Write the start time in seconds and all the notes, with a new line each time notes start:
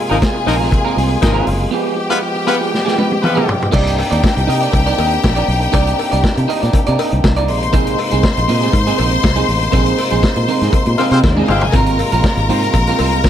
Already playing: C3 G#3 A#3 F4 G#4 G#5
0.10 G#1 F3 A#3 C4 D#4 F4 A#4
0.21 muted clean electric guitar stroke, kick, snare, closed hi-hat, cowbell
0.34 muted clean electric guitar stroke
0.46 A#1 F3 A#3 C4 D#4 F4 A#4 C5, open hi-hat
0.59 C4 F4 A#4, snare
0.70 muted clean electric guitar stroke, kick, closed hi-hat, cowbell
0.85 C4 F4 A#4
0.96 C2 C4 F4 C5, open hi-hat
1.09 muted clean electric guitar stroke
1.21 G#1 F3 A#3 D#4 A#4, muted clean electric guitar stroke, kick, snare, closed hi-hat, cowbell
1.34 C4 F4 A#4
1.46 F#1, muted clean electric guitar stroke, open hi-hat
1.59 muted clean electric guitar stroke
1.71 F3 B3 F4 G4 G#4 G5
1.96 muted clean electric guitar stroke
2.10 G#3 B3 F4 G#4 B4
2.21 muted clean electric guitar stroke
2.35 muted clean electric guitar stroke
2.47 G#3 B3 F4 B4
2.60 B3 F4 G#4
2.72 muted clean electric guitar stroke, snare
2.85 B3 F4 G#4, snare
2.96 B3 F4 B4, high tom
3.10 muted clean electric guitar stroke, high tom
3.22 G#3 B3 F4 B4, muted clean electric guitar stroke, mid tom
3.35 B3 F4 G#4, mid tom
3.46 muted clean electric guitar stroke, floor tom
3.60 muted clean electric guitar stroke, floor tom
3.71 C2 A#3 C4 D4 D#4 G4 A#4 D5 G5, kick, crash, cowbell
3.87 closed hi-hat
3.97 muted clean electric guitar stroke, open hi-hat, cowbell
4.11 D#2 D#4 A#4 D5, closed hi-hat
4.22 muted clean electric guitar stroke, kick, snare, cowbell
4.36 C2, muted clean electric guitar stroke, closed hi-hat
4.47 C3 D#4 A#4 D#5, open hi-hat
4.61 D#4 A#4 D5, closed hi-hat
4.72 C2, muted clean electric guitar stroke, kick, closed hi-hat, cowbell
4.86 D#4 A#4 D5, closed hi-hat
4.98 D#2 D#4 A#4 D#5, open hi-hat, cowbell
5.11 muted clean electric guitar stroke, closed hi-hat
5.23 A#1, muted clean electric guitar stroke, kick, snare, cowbell
5.36 D#4 A#4 D5, closed hi-hat
5.48 B1, muted clean electric guitar stroke, open hi-hat
5.61 muted clean electric guitar stroke, closed hi-hat
5.72 C2 D#4 A#4 D5, kick, closed hi-hat, cowbell
5.87 closed hi-hat
5.99 muted clean electric guitar stroke, open hi-hat, cowbell
6.11 C2 D#4 A#4 D5, closed hi-hat
6.23 muted clean electric guitar stroke, kick, snare, cowbell
6.36 C3, muted clean electric guitar stroke, closed hi-hat
6.48 D#4 A#4 D#5, open hi-hat
6.61 A#2 D#4 A#4 D5, snare, closed hi-hat
6.73 muted clean electric guitar stroke, muted fingered electric bass stroke, kick, closed hi-hat, cowbell
6.86 C3 D#4 A#4 D5, closed hi-hat
6.98 D#4 A#4 D#5, open hi-hat, cowbell
7.11 C2, muted clean electric guitar stroke, closed hi-hat
7.24 C2, muted clean electric guitar stroke, kick, snare, cowbell
7.36 D#4 A#4 D5, closed hi-hat
7.48 A#1 C3 G#3 C5 C6, muted clean electric guitar stroke, open hi-hat
7.61 muted clean electric guitar stroke, closed hi-hat
7.73 C4 D#4 G#4, kick, closed hi-hat, cowbell
7.87 closed hi-hat
7.98 muted clean electric guitar stroke, open hi-hat, cowbell
8.11 C2 C4 D#4 G#4, closed hi-hat
8.23 muted clean electric guitar stroke, kick, snare, cowbell
8.37 A#1, muted clean electric guitar stroke, closed hi-hat
8.48 A#2 C4 D#4 A#4, open hi-hat
8.61 C4 D#4 G#4, snare, closed hi-hat
8.72 G#2, muted clean electric guitar stroke, kick, closed hi-hat, cowbell
8.87 C4 D#4 G#4, closed hi-hat
8.98 A#1 C4 D#4 A#4, open hi-hat, cowbell
9.11 muted clean electric guitar stroke, closed hi-hat
9.23 C2, muted clean electric guitar stroke, kick, snare, cowbell
9.36 C4 D#4 G#4, closed hi-hat
9.48 A1, muted clean electric guitar stroke, open hi-hat
9.61 muted clean electric guitar stroke, closed hi-hat
9.72 A#1 C4 D#4 G#4, kick, closed hi-hat, cowbell
9.86 closed hi-hat
9.98 muted clean electric guitar stroke, open hi-hat, cowbell
10.10 A#1 C4 D#4 G#4, closed hi-hat
10.23 muted clean electric guitar stroke, kick, snare, cowbell
10.36 A#2, muted clean electric guitar stroke, closed hi-hat
10.48 C4 D#4 A#4, open hi-hat
10.61 G#2 C4 D#4 G#4, snare, closed hi-hat
10.73 muted fingered electric bass stroke, muted clean electric guitar stroke, kick, closed hi-hat, cowbell
10.86 A#2, muted clean electric guitar stroke, closed hi-hat
10.98 G#3 C4 D#4 F4 A#4 C5, open hi-hat, cowbell
11.11 C3 G#3 C4 F4 C5, muted clean electric guitar stroke, closed hi-hat
11.24 D#2 C4 C5, muted clean electric guitar stroke, kick, snare, cowbell
11.31 D4 D5
11.36 C4 D#4 G#4 D#5, high tom
11.47 G1 G#3 C4 F4 C5 F5, muted clean electric guitar stroke, mid tom
11.55 G4 G5
11.61 G#4 G#5, muted clean electric guitar stroke, floor tom
11.72 G#1 C4 F4 A#4 A#5, kick, closed hi-hat, cowbell
11.76 F4 A#4
11.86 closed hi-hat
11.99 muted clean electric guitar stroke, open hi-hat, cowbell
12.12 A#1 C4 F4 A#4, closed hi-hat
12.24 muted clean electric guitar stroke, kick, snare, cowbell
12.37 G#1, muted clean electric guitar stroke, closed hi-hat
12.49 G#2 C4 F4 C5, open hi-hat
12.62 C4 F4 A#4, closed hi-hat
12.73 A#1, muted clean electric guitar stroke, kick, closed hi-hat, cowbell
12.87 C4 F4 A#4, closed hi-hat
12.99 C2 C4 F4 C5, open hi-hat, cowbell
13.12 muted clean electric guitar stroke, closed hi-hat
13.24 A#1, muted clean electric guitar stroke, kick, snare, cowbell